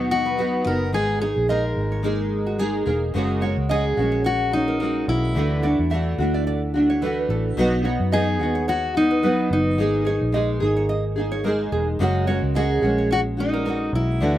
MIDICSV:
0, 0, Header, 1, 5, 480
1, 0, Start_track
1, 0, Tempo, 552995
1, 812, Time_signature, 4, 2, 24, 8
1, 12482, End_track
2, 0, Start_track
2, 0, Title_t, "Nylon-string guitar"
2, 0, Program_c, 0, 24
2, 223, Note_on_c, 0, 71, 63
2, 326, Note_off_c, 0, 71, 0
2, 335, Note_on_c, 0, 71, 72
2, 683, Note_off_c, 0, 71, 0
2, 1053, Note_on_c, 0, 73, 77
2, 1178, Note_off_c, 0, 73, 0
2, 1294, Note_on_c, 0, 75, 78
2, 1418, Note_off_c, 0, 75, 0
2, 1664, Note_on_c, 0, 73, 52
2, 1767, Note_off_c, 0, 73, 0
2, 1771, Note_on_c, 0, 70, 68
2, 1897, Note_off_c, 0, 70, 0
2, 2139, Note_on_c, 0, 66, 64
2, 2251, Note_off_c, 0, 66, 0
2, 2251, Note_on_c, 0, 68, 60
2, 2377, Note_off_c, 0, 68, 0
2, 2489, Note_on_c, 0, 70, 61
2, 2616, Note_off_c, 0, 70, 0
2, 2967, Note_on_c, 0, 73, 75
2, 3095, Note_off_c, 0, 73, 0
2, 3206, Note_on_c, 0, 75, 73
2, 3334, Note_off_c, 0, 75, 0
2, 3574, Note_on_c, 0, 73, 56
2, 3673, Note_off_c, 0, 73, 0
2, 3683, Note_on_c, 0, 73, 70
2, 3813, Note_off_c, 0, 73, 0
2, 4061, Note_on_c, 0, 70, 70
2, 4156, Note_off_c, 0, 70, 0
2, 4166, Note_on_c, 0, 70, 66
2, 4519, Note_off_c, 0, 70, 0
2, 4889, Note_on_c, 0, 74, 82
2, 5016, Note_off_c, 0, 74, 0
2, 5129, Note_on_c, 0, 76, 69
2, 5256, Note_off_c, 0, 76, 0
2, 5506, Note_on_c, 0, 74, 62
2, 5604, Note_off_c, 0, 74, 0
2, 5614, Note_on_c, 0, 74, 65
2, 5739, Note_off_c, 0, 74, 0
2, 5987, Note_on_c, 0, 73, 74
2, 6088, Note_off_c, 0, 73, 0
2, 6095, Note_on_c, 0, 71, 77
2, 6219, Note_off_c, 0, 71, 0
2, 6337, Note_on_c, 0, 69, 66
2, 6460, Note_off_c, 0, 69, 0
2, 6813, Note_on_c, 0, 73, 74
2, 6939, Note_off_c, 0, 73, 0
2, 7051, Note_on_c, 0, 75, 81
2, 7178, Note_off_c, 0, 75, 0
2, 7421, Note_on_c, 0, 73, 60
2, 7524, Note_off_c, 0, 73, 0
2, 7534, Note_on_c, 0, 73, 79
2, 7659, Note_off_c, 0, 73, 0
2, 7904, Note_on_c, 0, 71, 67
2, 8004, Note_off_c, 0, 71, 0
2, 8015, Note_on_c, 0, 71, 74
2, 8364, Note_off_c, 0, 71, 0
2, 8737, Note_on_c, 0, 73, 80
2, 8861, Note_off_c, 0, 73, 0
2, 8974, Note_on_c, 0, 75, 81
2, 9100, Note_off_c, 0, 75, 0
2, 9345, Note_on_c, 0, 73, 59
2, 9449, Note_off_c, 0, 73, 0
2, 9454, Note_on_c, 0, 75, 72
2, 9580, Note_off_c, 0, 75, 0
2, 9822, Note_on_c, 0, 73, 73
2, 9927, Note_off_c, 0, 73, 0
2, 9933, Note_on_c, 0, 70, 72
2, 10059, Note_off_c, 0, 70, 0
2, 10174, Note_on_c, 0, 68, 69
2, 10300, Note_off_c, 0, 68, 0
2, 10653, Note_on_c, 0, 73, 80
2, 10779, Note_off_c, 0, 73, 0
2, 10895, Note_on_c, 0, 75, 68
2, 11021, Note_off_c, 0, 75, 0
2, 11269, Note_on_c, 0, 73, 56
2, 11366, Note_off_c, 0, 73, 0
2, 11376, Note_on_c, 0, 73, 75
2, 11501, Note_off_c, 0, 73, 0
2, 11748, Note_on_c, 0, 70, 78
2, 11844, Note_off_c, 0, 70, 0
2, 11854, Note_on_c, 0, 70, 70
2, 12204, Note_off_c, 0, 70, 0
2, 12482, End_track
3, 0, Start_track
3, 0, Title_t, "Steel-string acoustic guitar"
3, 0, Program_c, 1, 25
3, 0, Note_on_c, 1, 66, 88
3, 88, Note_off_c, 1, 66, 0
3, 98, Note_on_c, 1, 66, 81
3, 577, Note_off_c, 1, 66, 0
3, 581, Note_on_c, 1, 70, 76
3, 815, Note_off_c, 1, 70, 0
3, 818, Note_on_c, 1, 68, 81
3, 1044, Note_off_c, 1, 68, 0
3, 1055, Note_on_c, 1, 68, 69
3, 1299, Note_off_c, 1, 68, 0
3, 1303, Note_on_c, 1, 70, 70
3, 2463, Note_off_c, 1, 70, 0
3, 3219, Note_on_c, 1, 68, 90
3, 3694, Note_off_c, 1, 68, 0
3, 3698, Note_on_c, 1, 66, 85
3, 3918, Note_off_c, 1, 66, 0
3, 3935, Note_on_c, 1, 63, 79
3, 4414, Note_off_c, 1, 63, 0
3, 4418, Note_on_c, 1, 64, 77
3, 6301, Note_off_c, 1, 64, 0
3, 7060, Note_on_c, 1, 68, 90
3, 7539, Note_off_c, 1, 68, 0
3, 7542, Note_on_c, 1, 66, 90
3, 7762, Note_off_c, 1, 66, 0
3, 7786, Note_on_c, 1, 63, 70
3, 8227, Note_off_c, 1, 63, 0
3, 8270, Note_on_c, 1, 63, 62
3, 10148, Note_off_c, 1, 63, 0
3, 10904, Note_on_c, 1, 68, 84
3, 11388, Note_off_c, 1, 68, 0
3, 11392, Note_on_c, 1, 66, 87
3, 11454, Note_off_c, 1, 66, 0
3, 11633, Note_on_c, 1, 63, 71
3, 12071, Note_off_c, 1, 63, 0
3, 12112, Note_on_c, 1, 64, 68
3, 12482, Note_off_c, 1, 64, 0
3, 12482, End_track
4, 0, Start_track
4, 0, Title_t, "Nylon-string guitar"
4, 0, Program_c, 2, 24
4, 0, Note_on_c, 2, 47, 61
4, 0, Note_on_c, 2, 54, 68
4, 0, Note_on_c, 2, 59, 73
4, 0, Note_on_c, 2, 63, 68
4, 0, Note_on_c, 2, 66, 77
4, 311, Note_off_c, 2, 54, 0
4, 321, Note_off_c, 2, 59, 0
4, 322, Note_on_c, 2, 54, 53
4, 328, Note_off_c, 2, 47, 0
4, 331, Note_on_c, 2, 59, 54
4, 336, Note_off_c, 2, 66, 0
4, 337, Note_off_c, 2, 63, 0
4, 341, Note_on_c, 2, 63, 59
4, 347, Note_on_c, 2, 66, 60
4, 552, Note_off_c, 2, 66, 0
4, 563, Note_on_c, 2, 66, 46
4, 566, Note_off_c, 2, 54, 0
4, 568, Note_off_c, 2, 63, 0
4, 571, Note_off_c, 2, 59, 0
4, 579, Note_on_c, 2, 63, 41
4, 592, Note_on_c, 2, 59, 38
4, 802, Note_on_c, 2, 56, 68
4, 804, Note_off_c, 2, 63, 0
4, 805, Note_off_c, 2, 59, 0
4, 807, Note_off_c, 2, 66, 0
4, 809, Note_on_c, 2, 58, 60
4, 815, Note_on_c, 2, 63, 56
4, 823, Note_on_c, 2, 68, 69
4, 1031, Note_off_c, 2, 68, 0
4, 1041, Note_on_c, 2, 68, 41
4, 1047, Note_off_c, 2, 56, 0
4, 1047, Note_off_c, 2, 63, 0
4, 1050, Note_off_c, 2, 58, 0
4, 1058, Note_on_c, 2, 63, 34
4, 1068, Note_on_c, 2, 58, 35
4, 1284, Note_on_c, 2, 56, 48
4, 1286, Note_off_c, 2, 58, 0
4, 1286, Note_off_c, 2, 68, 0
4, 1295, Note_off_c, 2, 63, 0
4, 1296, Note_on_c, 2, 58, 53
4, 1304, Note_on_c, 2, 63, 60
4, 1312, Note_on_c, 2, 68, 54
4, 1756, Note_off_c, 2, 56, 0
4, 1760, Note_on_c, 2, 56, 66
4, 1764, Note_off_c, 2, 63, 0
4, 1767, Note_off_c, 2, 58, 0
4, 1771, Note_on_c, 2, 58, 73
4, 1775, Note_on_c, 2, 63, 78
4, 1777, Note_off_c, 2, 68, 0
4, 1781, Note_on_c, 2, 68, 78
4, 2240, Note_off_c, 2, 56, 0
4, 2244, Note_on_c, 2, 56, 62
4, 2248, Note_off_c, 2, 58, 0
4, 2251, Note_off_c, 2, 63, 0
4, 2252, Note_on_c, 2, 58, 68
4, 2262, Note_on_c, 2, 63, 67
4, 2264, Note_off_c, 2, 68, 0
4, 2267, Note_on_c, 2, 68, 73
4, 2468, Note_off_c, 2, 68, 0
4, 2479, Note_on_c, 2, 68, 51
4, 2481, Note_off_c, 2, 63, 0
4, 2488, Note_off_c, 2, 56, 0
4, 2492, Note_off_c, 2, 58, 0
4, 2492, Note_on_c, 2, 63, 45
4, 2506, Note_on_c, 2, 58, 49
4, 2723, Note_on_c, 2, 42, 75
4, 2725, Note_off_c, 2, 68, 0
4, 2727, Note_off_c, 2, 58, 0
4, 2729, Note_on_c, 2, 49, 80
4, 2732, Note_off_c, 2, 63, 0
4, 2732, Note_on_c, 2, 56, 71
4, 2738, Note_on_c, 2, 58, 72
4, 2740, Note_on_c, 2, 61, 75
4, 2745, Note_on_c, 2, 66, 77
4, 2950, Note_off_c, 2, 66, 0
4, 2961, Note_off_c, 2, 61, 0
4, 2961, Note_on_c, 2, 66, 55
4, 2967, Note_off_c, 2, 42, 0
4, 2970, Note_off_c, 2, 49, 0
4, 2971, Note_off_c, 2, 58, 0
4, 2971, Note_on_c, 2, 61, 41
4, 2972, Note_off_c, 2, 56, 0
4, 2981, Note_on_c, 2, 58, 42
4, 2988, Note_on_c, 2, 56, 46
4, 3193, Note_off_c, 2, 56, 0
4, 3203, Note_off_c, 2, 58, 0
4, 3203, Note_on_c, 2, 56, 50
4, 3206, Note_off_c, 2, 66, 0
4, 3212, Note_off_c, 2, 61, 0
4, 3213, Note_on_c, 2, 58, 49
4, 3224, Note_on_c, 2, 61, 51
4, 3229, Note_on_c, 2, 66, 61
4, 3435, Note_off_c, 2, 66, 0
4, 3443, Note_off_c, 2, 61, 0
4, 3445, Note_on_c, 2, 66, 49
4, 3447, Note_off_c, 2, 56, 0
4, 3453, Note_off_c, 2, 58, 0
4, 3454, Note_on_c, 2, 61, 42
4, 3462, Note_on_c, 2, 58, 46
4, 3473, Note_on_c, 2, 56, 42
4, 3917, Note_off_c, 2, 66, 0
4, 3920, Note_off_c, 2, 61, 0
4, 3920, Note_on_c, 2, 66, 44
4, 3931, Note_on_c, 2, 61, 43
4, 3933, Note_off_c, 2, 58, 0
4, 3937, Note_off_c, 2, 56, 0
4, 3943, Note_on_c, 2, 58, 39
4, 3948, Note_on_c, 2, 56, 38
4, 4153, Note_off_c, 2, 56, 0
4, 4163, Note_on_c, 2, 56, 53
4, 4164, Note_off_c, 2, 58, 0
4, 4166, Note_off_c, 2, 66, 0
4, 4172, Note_off_c, 2, 61, 0
4, 4174, Note_on_c, 2, 58, 61
4, 4184, Note_on_c, 2, 61, 59
4, 4189, Note_on_c, 2, 66, 66
4, 4640, Note_on_c, 2, 50, 62
4, 4643, Note_off_c, 2, 56, 0
4, 4646, Note_on_c, 2, 52, 69
4, 4651, Note_off_c, 2, 58, 0
4, 4654, Note_on_c, 2, 57, 71
4, 4655, Note_off_c, 2, 61, 0
4, 4658, Note_off_c, 2, 66, 0
4, 4658, Note_on_c, 2, 62, 67
4, 4661, Note_on_c, 2, 66, 66
4, 4871, Note_off_c, 2, 66, 0
4, 4881, Note_on_c, 2, 66, 46
4, 4885, Note_off_c, 2, 62, 0
4, 4886, Note_off_c, 2, 50, 0
4, 4889, Note_off_c, 2, 52, 0
4, 4893, Note_off_c, 2, 57, 0
4, 4896, Note_on_c, 2, 62, 41
4, 4907, Note_on_c, 2, 57, 38
4, 5121, Note_on_c, 2, 52, 63
4, 5125, Note_off_c, 2, 57, 0
4, 5127, Note_off_c, 2, 66, 0
4, 5130, Note_off_c, 2, 62, 0
4, 5136, Note_on_c, 2, 57, 62
4, 5140, Note_on_c, 2, 62, 63
4, 5150, Note_on_c, 2, 66, 60
4, 5357, Note_off_c, 2, 66, 0
4, 5367, Note_off_c, 2, 52, 0
4, 5367, Note_on_c, 2, 66, 59
4, 5372, Note_off_c, 2, 62, 0
4, 5374, Note_off_c, 2, 57, 0
4, 5382, Note_on_c, 2, 62, 59
4, 5397, Note_on_c, 2, 57, 51
4, 5845, Note_off_c, 2, 66, 0
4, 5849, Note_on_c, 2, 66, 53
4, 5852, Note_off_c, 2, 62, 0
4, 5863, Note_on_c, 2, 62, 51
4, 5865, Note_off_c, 2, 57, 0
4, 5878, Note_on_c, 2, 57, 42
4, 6090, Note_on_c, 2, 52, 68
4, 6091, Note_off_c, 2, 66, 0
4, 6092, Note_off_c, 2, 57, 0
4, 6098, Note_off_c, 2, 62, 0
4, 6102, Note_on_c, 2, 57, 72
4, 6110, Note_on_c, 2, 62, 69
4, 6119, Note_on_c, 2, 66, 70
4, 6570, Note_on_c, 2, 47, 77
4, 6572, Note_off_c, 2, 52, 0
4, 6577, Note_on_c, 2, 54, 84
4, 6578, Note_off_c, 2, 57, 0
4, 6582, Note_off_c, 2, 62, 0
4, 6582, Note_on_c, 2, 59, 73
4, 6585, Note_off_c, 2, 66, 0
4, 6588, Note_on_c, 2, 63, 72
4, 6589, Note_on_c, 2, 66, 89
4, 6795, Note_off_c, 2, 66, 0
4, 6805, Note_on_c, 2, 66, 57
4, 6808, Note_off_c, 2, 63, 0
4, 6812, Note_off_c, 2, 47, 0
4, 6815, Note_off_c, 2, 54, 0
4, 6818, Note_off_c, 2, 59, 0
4, 6818, Note_on_c, 2, 63, 48
4, 6834, Note_on_c, 2, 59, 45
4, 7043, Note_off_c, 2, 59, 0
4, 7044, Note_on_c, 2, 54, 50
4, 7049, Note_off_c, 2, 66, 0
4, 7054, Note_on_c, 2, 59, 58
4, 7056, Note_off_c, 2, 63, 0
4, 7065, Note_on_c, 2, 63, 67
4, 7071, Note_on_c, 2, 66, 56
4, 7275, Note_off_c, 2, 66, 0
4, 7285, Note_on_c, 2, 66, 47
4, 7289, Note_off_c, 2, 54, 0
4, 7290, Note_off_c, 2, 63, 0
4, 7294, Note_off_c, 2, 59, 0
4, 7301, Note_on_c, 2, 63, 47
4, 7313, Note_on_c, 2, 59, 47
4, 7754, Note_off_c, 2, 66, 0
4, 7765, Note_on_c, 2, 66, 49
4, 7777, Note_off_c, 2, 63, 0
4, 7781, Note_on_c, 2, 63, 44
4, 7784, Note_off_c, 2, 59, 0
4, 7795, Note_on_c, 2, 59, 39
4, 8007, Note_on_c, 2, 54, 61
4, 8008, Note_off_c, 2, 59, 0
4, 8009, Note_off_c, 2, 66, 0
4, 8017, Note_off_c, 2, 63, 0
4, 8018, Note_on_c, 2, 59, 65
4, 8027, Note_on_c, 2, 63, 58
4, 8035, Note_on_c, 2, 66, 64
4, 8485, Note_off_c, 2, 54, 0
4, 8489, Note_on_c, 2, 56, 73
4, 8493, Note_off_c, 2, 59, 0
4, 8496, Note_on_c, 2, 58, 71
4, 8499, Note_off_c, 2, 63, 0
4, 8502, Note_on_c, 2, 63, 79
4, 8504, Note_off_c, 2, 66, 0
4, 8508, Note_on_c, 2, 68, 68
4, 8711, Note_off_c, 2, 68, 0
4, 8721, Note_on_c, 2, 68, 53
4, 8727, Note_off_c, 2, 63, 0
4, 8732, Note_off_c, 2, 56, 0
4, 8735, Note_off_c, 2, 58, 0
4, 8738, Note_on_c, 2, 63, 42
4, 8749, Note_on_c, 2, 58, 36
4, 8960, Note_off_c, 2, 58, 0
4, 8960, Note_on_c, 2, 56, 62
4, 8968, Note_off_c, 2, 68, 0
4, 8969, Note_off_c, 2, 63, 0
4, 8971, Note_on_c, 2, 58, 57
4, 8980, Note_on_c, 2, 63, 60
4, 8986, Note_on_c, 2, 68, 60
4, 9191, Note_off_c, 2, 68, 0
4, 9202, Note_on_c, 2, 68, 58
4, 9208, Note_off_c, 2, 56, 0
4, 9208, Note_off_c, 2, 63, 0
4, 9213, Note_off_c, 2, 58, 0
4, 9219, Note_on_c, 2, 63, 49
4, 9230, Note_on_c, 2, 58, 47
4, 9681, Note_off_c, 2, 68, 0
4, 9684, Note_on_c, 2, 68, 49
4, 9689, Note_off_c, 2, 63, 0
4, 9699, Note_on_c, 2, 63, 49
4, 9707, Note_off_c, 2, 58, 0
4, 9710, Note_on_c, 2, 58, 43
4, 9924, Note_off_c, 2, 58, 0
4, 9926, Note_on_c, 2, 56, 58
4, 9930, Note_off_c, 2, 68, 0
4, 9934, Note_off_c, 2, 63, 0
4, 9935, Note_on_c, 2, 58, 63
4, 9945, Note_on_c, 2, 63, 74
4, 9953, Note_on_c, 2, 68, 78
4, 10408, Note_on_c, 2, 42, 71
4, 10412, Note_on_c, 2, 49, 77
4, 10415, Note_off_c, 2, 56, 0
4, 10418, Note_off_c, 2, 58, 0
4, 10418, Note_off_c, 2, 63, 0
4, 10418, Note_on_c, 2, 56, 84
4, 10421, Note_on_c, 2, 61, 76
4, 10422, Note_on_c, 2, 58, 82
4, 10425, Note_off_c, 2, 68, 0
4, 10428, Note_on_c, 2, 66, 91
4, 10639, Note_off_c, 2, 66, 0
4, 10649, Note_on_c, 2, 66, 52
4, 10651, Note_off_c, 2, 42, 0
4, 10652, Note_off_c, 2, 61, 0
4, 10653, Note_off_c, 2, 49, 0
4, 10656, Note_off_c, 2, 56, 0
4, 10658, Note_off_c, 2, 58, 0
4, 10662, Note_on_c, 2, 61, 56
4, 10672, Note_on_c, 2, 58, 44
4, 10679, Note_on_c, 2, 56, 40
4, 10875, Note_off_c, 2, 56, 0
4, 10885, Note_on_c, 2, 56, 51
4, 10887, Note_off_c, 2, 58, 0
4, 10892, Note_off_c, 2, 66, 0
4, 10893, Note_off_c, 2, 61, 0
4, 10898, Note_on_c, 2, 58, 57
4, 10904, Note_on_c, 2, 61, 52
4, 10912, Note_on_c, 2, 66, 58
4, 11112, Note_off_c, 2, 66, 0
4, 11122, Note_on_c, 2, 66, 49
4, 11124, Note_off_c, 2, 61, 0
4, 11130, Note_off_c, 2, 56, 0
4, 11132, Note_off_c, 2, 58, 0
4, 11134, Note_on_c, 2, 61, 51
4, 11142, Note_on_c, 2, 58, 40
4, 11151, Note_on_c, 2, 56, 42
4, 11602, Note_off_c, 2, 66, 0
4, 11606, Note_off_c, 2, 61, 0
4, 11606, Note_on_c, 2, 66, 42
4, 11614, Note_off_c, 2, 58, 0
4, 11616, Note_on_c, 2, 61, 49
4, 11623, Note_off_c, 2, 56, 0
4, 11624, Note_on_c, 2, 58, 42
4, 11632, Note_on_c, 2, 56, 40
4, 11839, Note_off_c, 2, 56, 0
4, 11849, Note_off_c, 2, 58, 0
4, 11850, Note_off_c, 2, 66, 0
4, 11850, Note_on_c, 2, 56, 54
4, 11855, Note_off_c, 2, 61, 0
4, 11859, Note_on_c, 2, 58, 64
4, 11867, Note_on_c, 2, 61, 65
4, 11878, Note_on_c, 2, 66, 66
4, 12330, Note_on_c, 2, 50, 70
4, 12332, Note_off_c, 2, 56, 0
4, 12337, Note_off_c, 2, 58, 0
4, 12338, Note_on_c, 2, 52, 70
4, 12341, Note_off_c, 2, 61, 0
4, 12341, Note_on_c, 2, 57, 69
4, 12345, Note_on_c, 2, 62, 72
4, 12346, Note_off_c, 2, 66, 0
4, 12350, Note_on_c, 2, 66, 74
4, 12482, Note_off_c, 2, 50, 0
4, 12482, Note_off_c, 2, 52, 0
4, 12482, Note_off_c, 2, 57, 0
4, 12482, Note_off_c, 2, 62, 0
4, 12482, Note_off_c, 2, 66, 0
4, 12482, End_track
5, 0, Start_track
5, 0, Title_t, "Fingered electric bass"
5, 0, Program_c, 3, 33
5, 0, Note_on_c, 3, 39, 65
5, 537, Note_off_c, 3, 39, 0
5, 570, Note_on_c, 3, 30, 75
5, 808, Note_off_c, 3, 30, 0
5, 808, Note_on_c, 3, 32, 79
5, 1152, Note_off_c, 3, 32, 0
5, 1182, Note_on_c, 3, 34, 81
5, 1503, Note_off_c, 3, 34, 0
5, 1529, Note_on_c, 3, 32, 78
5, 2455, Note_off_c, 3, 32, 0
5, 2488, Note_on_c, 3, 28, 77
5, 2710, Note_off_c, 3, 28, 0
5, 2729, Note_on_c, 3, 30, 72
5, 3073, Note_off_c, 3, 30, 0
5, 3097, Note_on_c, 3, 37, 72
5, 3420, Note_off_c, 3, 37, 0
5, 3448, Note_on_c, 3, 34, 67
5, 4375, Note_off_c, 3, 34, 0
5, 4409, Note_on_c, 3, 35, 89
5, 4631, Note_off_c, 3, 35, 0
5, 4650, Note_on_c, 3, 38, 81
5, 4993, Note_off_c, 3, 38, 0
5, 5025, Note_on_c, 3, 40, 74
5, 5345, Note_off_c, 3, 40, 0
5, 5366, Note_on_c, 3, 38, 71
5, 6295, Note_off_c, 3, 38, 0
5, 6325, Note_on_c, 3, 33, 81
5, 6550, Note_off_c, 3, 33, 0
5, 6570, Note_on_c, 3, 35, 83
5, 6914, Note_off_c, 3, 35, 0
5, 6941, Note_on_c, 3, 42, 92
5, 7293, Note_off_c, 3, 42, 0
5, 7293, Note_on_c, 3, 39, 75
5, 8219, Note_off_c, 3, 39, 0
5, 8250, Note_on_c, 3, 30, 82
5, 8491, Note_off_c, 3, 30, 0
5, 8491, Note_on_c, 3, 32, 73
5, 8835, Note_off_c, 3, 32, 0
5, 8865, Note_on_c, 3, 34, 77
5, 9186, Note_off_c, 3, 34, 0
5, 9212, Note_on_c, 3, 32, 76
5, 10139, Note_off_c, 3, 32, 0
5, 10173, Note_on_c, 3, 28, 85
5, 10395, Note_off_c, 3, 28, 0
5, 10410, Note_on_c, 3, 30, 90
5, 10755, Note_off_c, 3, 30, 0
5, 10783, Note_on_c, 3, 37, 82
5, 11105, Note_off_c, 3, 37, 0
5, 11131, Note_on_c, 3, 34, 87
5, 12058, Note_off_c, 3, 34, 0
5, 12089, Note_on_c, 3, 35, 92
5, 12313, Note_off_c, 3, 35, 0
5, 12330, Note_on_c, 3, 38, 78
5, 12482, Note_off_c, 3, 38, 0
5, 12482, End_track
0, 0, End_of_file